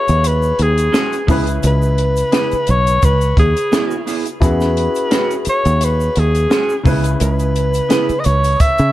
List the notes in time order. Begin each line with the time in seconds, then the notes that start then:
Already playing: C#4 E4 F#4 G#4 C#5
0.08 D#2, closed hi-hat, shaker
0.24 B4, closed hi-hat, shaker
0.42 shaker
0.59 D#2 G#4, closed hi-hat
0.78 closed hi-hat, shaker
0.92 C#4 F#4 G#4, snare, closed hi-hat, shaker
1.12 closed hi-hat, shaker
1.27 C#2 C#3 B3 C#4 E4 G#4 B4, kick, open hi-hat, shaker
1.47 closed hi-hat, shaker
1.63 C#2, closed hi-hat, shaker
1.67 B4
1.82 shaker
1.98 closed hi-hat
2.16 closed hi-hat, shaker
2.32 B3 E4 G#4, snare, closed hi-hat, shaker
2.51 muted fingered electric bass stroke, closed hi-hat, shaker
2.67 B1 C#5, closed hi-hat, shaker
2.87 closed hi-hat, shaker
3.02 C#2 B4, kick, closed hi-hat, shaker
3.21 closed hi-hat, shaker
3.37 D#2 G#4, kick, closed hi-hat
3.57 closed hi-hat, shaker
3.71 B3 E4 G#4, snare, closed hi-hat, shaker
3.91 shaker
4.06 B3 E4 G#4, open hi-hat, shaker
4.25 closed hi-hat, shaker
4.41 E2 C#4 E4 F#4 G#4 B4, kick, closed hi-hat, shaker
4.61 snare, shaker
4.77 closed hi-hat
4.95 closed hi-hat, shaker
5.10 C#4 F#4 G#4, snare, closed hi-hat, shaker
5.30 closed hi-hat, shaker
5.45 muted fingered electric bass stroke, closed hi-hat, shaker
5.49 C#5
5.65 D#2, closed hi-hat, shaker
5.81 B4, closed hi-hat, shaker
6.01 shaker
6.16 D#2 G#4, closed hi-hat
6.35 closed hi-hat, shaker
6.50 C#4 F#4 G#4, snare, closed hi-hat, shaker
6.69 shaker
6.83 C#2 C#3 B3 C#4 E4 G#4, kick, open hi-hat, shaker
6.87 B4
7.04 closed hi-hat, shaker
7.20 C#2 B4, closed hi-hat, shaker
7.39 closed hi-hat, shaker
7.56 closed hi-hat, shaker
7.74 closed hi-hat, shaker
7.89 B3 E4 G#4, snare, closed hi-hat, shaker
8.09 muted fingered electric bass stroke, closed hi-hat, shaker
8.20 D#5
8.24 C#2 C#5, closed hi-hat, shaker
8.44 closed hi-hat, shaker
8.60 E5, kick, closed hi-hat, shaker
8.78 C#3, closed hi-hat, shaker